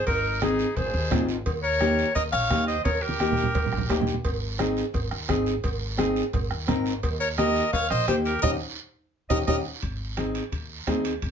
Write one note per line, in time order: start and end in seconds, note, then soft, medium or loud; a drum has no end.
0.06 0.62 G#1 medium
0.06 0.39 D#4 medium
0.06 0.39 A#4 medium
0.06 bombo low medium
0.06 cowbell loud
0.06 high conga soft
0.06 long guiro medium
0.41 0.66 C4 medium
0.41 0.77 D#4 medium
0.41 0.66 D#4 medium
0.41 0.78 G#4 medium
0.41 0.66 G#4 medium
0.41 bombo rim medium
0.41 cowbell medium
0.41 high conga medium
0.41 short guiro medium
0.59 short guiro medium
0.76 0.90 G#1 medium
0.76 1.28 G#4 medium
0.76 1.29 C5 medium
0.76 bombo low medium
0.76 cowbell medium
0.76 high conga soft
0.76 low conga medium
0.76 long guiro medium
0.94 1.08 D#2 medium
1.10 1.39 G#1 medium
1.10 1.35 C4 medium
1.10 1.35 D#4 medium
1.10 1.36 F4 medium
1.10 bombo low medium
1.10 bombo rim medium
1.10 cowbell medium
1.10 high conga medium
1.10 low conga medium
1.10 low timbale medium
1.10 short guiro medium
1.29 short guiro medium
1.46 2.02 D#2 loud
1.46 bombo low medium
1.46 cowbell loud
1.46 high conga soft
1.46 long guiro medium
1.63 2.12 A#4 medium
1.63 2.12 C#5 loud
1.80 2.05 A#3 medium
1.80 2.05 D#4 medium
1.80 2.05 G4 medium
1.80 bombo rim medium
1.80 cowbell medium
1.80 high conga medium
1.80 short guiro medium
1.99 short guiro medium
2.15 2.30 D#2 medium
2.15 2.23 A#4 medium
2.15 2.23 D#5 loud
2.15 bombo low medium
2.15 cowbell medium
2.15 high conga soft
2.15 long guiro medium
2.32 2.47 A#1 medium
2.32 2.65 C#5 medium
2.32 2.65 F5 loud
2.32 bombo rim medium
2.50 2.78 D#2 medium
2.50 2.75 A#3 medium
2.50 2.75 D#4 medium
2.50 2.75 G4 medium
2.50 bombo low medium
2.50 bombo rim medium
2.50 cowbell medium
2.50 high conga medium
2.50 short guiro medium
2.67 2.84 C5 medium
2.67 2.84 D#5 loud
2.67 short guiro medium
2.84 3.41 D#2 medium
2.84 3.03 A#4 medium
2.84 3.03 C#5 medium
2.84 bombo low medium
2.84 cowbell loud
2.84 high conga medium
2.84 long guiro medium
3.02 4.07 G4 medium
3.02 4.07 A#4 medium
3.09 high conga medium
3.20 3.44 A#3 medium
3.20 3.45 D#4 medium
3.20 3.45 G4 medium
3.20 bombo rim medium
3.20 cowbell medium
3.20 high conga medium
3.20 short guiro medium
3.32 low conga loud
3.37 short guiro medium
3.44 low conga loud
3.55 3.69 D#2 medium
3.55 bombo low medium
3.55 cowbell medium
3.55 low conga medium
3.55 long guiro medium
3.66 low conga medium
3.72 3.86 A#1 medium
3.72 bombo rim medium
3.78 low conga loud
3.89 4.18 D#2 medium
3.89 4.14 A#3 medium
3.89 4.14 D#4 medium
3.89 4.14 G4 medium
3.89 bombo low medium
3.89 bombo rim medium
3.89 cowbell medium
3.89 low timbale medium
3.89 short guiro medium
4.01 low conga loud
4.07 short guiro medium
4.13 low conga medium
4.24 4.80 G#1 medium
4.24 bombo low medium
4.24 cowbell loud
4.24 high conga soft
4.24 long guiro medium
4.58 4.83 C4 medium
4.58 4.83 D#4 medium
4.58 4.84 G#4 medium
4.58 bombo rim medium
4.58 cowbell medium
4.58 high conga medium
4.58 short guiro medium
4.77 short guiro medium
4.94 5.08 G#1 medium
4.94 bombo low medium
4.94 cowbell medium
4.94 high conga soft
4.94 long guiro medium
5.11 5.25 D#2 medium
5.11 bombo rim medium
5.28 5.57 G#1 medium
5.28 5.53 C4 medium
5.28 5.53 D#4 medium
5.28 5.53 G#4 medium
5.28 bombo low medium
5.28 bombo rim medium
5.28 cowbell medium
5.28 high conga medium
5.28 short guiro medium
5.46 short guiro medium
5.64 6.20 G#1 loud
5.64 bombo low medium
5.64 cowbell loud
5.64 high conga soft
5.64 long guiro medium
5.97 6.22 C4 medium
5.97 6.23 D#4 medium
5.97 6.23 G#4 medium
5.97 bombo rim medium
5.97 cowbell medium
5.97 high conga medium
5.97 short guiro medium
6.16 short guiro medium
6.33 6.47 G#1 medium
6.33 bombo low medium
6.33 cowbell medium
6.33 high conga soft
6.33 low conga medium
6.33 long guiro medium
6.51 6.65 D#2 medium
6.51 bombo rim medium
6.67 6.97 G#1 medium
6.67 6.92 C4 medium
6.67 6.92 D#4 medium
6.67 6.93 A#4 loud
6.67 bombo rim medium
6.67 cowbell medium
6.67 high conga medium
6.67 low conga medium
6.67 short guiro medium
6.86 short guiro medium
7.03 7.59 D#2 medium
7.03 bombo low medium
7.03 cowbell loud
7.03 high conga soft
7.03 long guiro medium
7.20 7.28 A#4 medium
7.20 7.28 C#5 medium
7.38 7.62 A#3 medium
7.38 7.63 D#4 medium
7.38 7.63 G4 medium
7.38 7.71 A#4 medium
7.38 7.71 D#5 medium
7.38 bombo rim medium
7.38 cowbell medium
7.38 high conga medium
7.38 short guiro medium
7.55 short guiro medium
7.73 7.87 D#2 loud
7.73 7.89 C#5 medium
7.73 7.89 F5 loud
7.73 bombo low medium
7.73 cowbell medium
7.73 high conga soft
7.73 long guiro medium
7.90 8.05 A#1 medium
7.90 8.07 C5 medium
7.90 8.07 D#5 loud
7.90 bombo rim medium
8.08 8.36 D#2 medium
8.08 8.32 A#3 medium
8.08 8.32 D#4 medium
8.08 8.16 G4 medium
8.08 8.33 G4 medium
8.08 8.16 C5 medium
8.08 bombo rim medium
8.08 cowbell medium
8.08 high conga medium
8.08 short guiro medium
8.25 8.41 G4 medium
8.25 8.42 A#4 medium
8.25 short guiro medium
8.42 8.56 D#2 medium
8.42 8.54 C#4 medium
8.42 8.54 D#4 medium
8.42 8.54 G4 loud
8.42 8.51 A#4 loud
8.42 8.51 D#5 loud
8.42 bombo low loud
8.42 low conga medium
8.42 high timbale loud
8.42 long guiro loud
9.30 9.43 D#2 loud
9.30 9.41 C#4 medium
9.30 9.41 D#4 medium
9.30 9.41 G4 medium
9.30 9.38 A#4 loud
9.30 9.38 D#5 loud
9.30 bombo low loud
9.30 low conga medium
9.30 high timbale loud
9.30 long guiro loud
9.47 9.61 D#2 medium
9.47 9.59 C#4 loud
9.47 9.59 D#4 medium
9.47 9.59 G4 medium
9.47 9.56 A#4 medium
9.47 9.56 D#5 medium
9.47 bombo low loud
9.47 low conga loud
9.47 high timbale loud
9.47 long guiro medium
9.82 10.38 G#1 medium
9.82 bombo low medium
9.82 high conga soft
9.82 high timbale medium
9.82 long guiro medium
10.17 10.42 C4 medium
10.17 10.42 D#4 medium
10.17 10.42 G#4 medium
10.17 bombo rim medium
10.17 high conga medium
10.17 high timbale medium
10.17 short guiro medium
10.35 high timbale medium
10.35 short guiro medium
10.52 10.80 D#2 medium
10.52 bombo low medium
10.52 high conga soft
10.52 high timbale medium
10.52 long guiro medium
10.87 11.15 D#2 medium
10.87 11.12 C4 medium
10.87 11.12 D#4 medium
10.87 11.12 G#4 medium
10.87 bombo low medium
10.87 bombo rim medium
10.87 high conga medium
10.87 high timbale medium
10.87 low timbale medium
10.87 short guiro medium
11.05 high timbale medium
11.05 short guiro medium
11.22 11.31 G#1 medium
11.22 bombo low medium
11.22 high conga soft
11.22 high timbale medium
11.22 long guiro medium